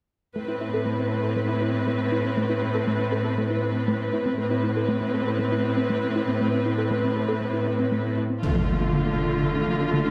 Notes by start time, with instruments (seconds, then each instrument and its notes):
0.36 cello section A2, synth arpeggio sound A3, viola section C4 B4
0.48 synth arpeggio sound E4
0.61 synth arpeggio sound E4
0.74 synth arpeggio sound A4
0.86 synth arpeggio sound A3
0.99 synth arpeggio sound C4
1.11 synth arpeggio sound A4
1.24 synth arpeggio sound A4
1.36 synth arpeggio sound A3
1.49 synth arpeggio sound E4
1.62 synth arpeggio sound E4
1.74 synth arpeggio sound C4
1.87 synth arpeggio sound A3
2.12 synth arpeggio sound E4
2.25 synth arpeggio sound C4
2.37 synth arpeggio sound A3
2.50 synth arpeggio sound E4
2.62 synth arpeggio sound E4
2.75 synth arpeggio sound A4
2.87 synth arpeggio sound A3
3.00 synth arpeggio sound C4
3.12 synth arpeggio sound A4
3.25 synth arpeggio sound A4
3.38 synth arpeggio sound A3
3.50 synth arpeggio sound E4
3.63 synth arpeggio sound E4
3.76 synth arpeggio sound C4
3.88 synth arpeggio sound A3
4.13 synth arpeggio sound E4
4.26 synth arpeggio sound C4
4.38 cello section A2, synth arpeggio sound A3, viola section C4 B4
4.51 synth arpeggio sound E4
4.64 synth arpeggio sound E4
4.76 synth arpeggio sound A4
4.89 synth arpeggio sound A3
5.01 synth arpeggio sound C4
5.14 synth arpeggio sound A4
5.27 synth arpeggio sound A4
5.39 synth arpeggio sound A3
5.52 synth arpeggio sound E4
5.65 synth arpeggio sound E4
5.77 synth arpeggio sound C4
5.90 synth arpeggio sound A3
6.16 synth arpeggio sound E4
6.28 synth arpeggio sound C4
6.41 synth arpeggio sound A3
6.53 synth arpeggio sound E4
6.66 synth arpeggio sound E4
6.78 synth arpeggio sound A4
6.91 synth arpeggio sound A3
7.04 synth arpeggio sound C4
7.16 synth arpeggio sound A4
7.29 synth arpeggio sound A4
7.41 synth arpeggio sound A3
7.54 synth arpeggio sound E4
7.67 synth arpeggio sound E4
7.79 synth arpeggio sound C4
7.92 synth arpeggio sound A3
8.18 synth arpeggio sound E4
8.30 synth arpeggio sound C4
8.43 synth arpeggio sound D3, cello section D3, viola section A3 F4, impact
8.55 synth arpeggio sound F3
8.68 synth arpeggio sound D4
8.80 synth arpeggio sound A3
8.93 synth arpeggio sound D3
9.18 synth arpeggio sound A3
9.43 synth arpeggio sound D3
9.56 synth arpeggio sound D4
9.68 synth arpeggio sound F3
9.81 synth arpeggio sound D4
9.93 synth arpeggio sound D3
10.06 synth arpeggio sound D4